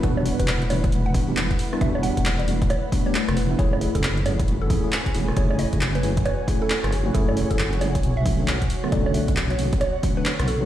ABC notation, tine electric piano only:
X:1
M:4/4
L:1/16
Q:"Swing 16ths" 1/4=135
K:F#phr
V:1 name="Tine electric piano"
[G,B,DF]3 [G,B,DF] z2 [G,B,DF] z3 [G,B,DF] [G,B,DG] z3 [G,B,DE] | [G,B,DF]3 [G,B,DF] z2 [G,B,DF] z3 [G,B,DF] [G,B,DG] z3 [G,B,DE] | [A,CE^G]3 [A,CEG] z2 [A,CEG] z3 [A,CEG] [A,CEG] z2 [A,CEG] z | [A,CE^G]3 [A,CEG] z2 [A,CEG] z3 [A,CEG] [A,CEA] z3 [A,CEF] |
[A,CE^G]3 [A,CEG] z2 [A,CEG] z3 [D,F,A,C] [D,F,A,D] z3 [D,F,A,B,] | [D,F,A,C]3 [D,F,A,C] z2 [D,F,A,C] z3 [D,F,A,C] [D,F,A,D] z3 [D,F,A,B,] |]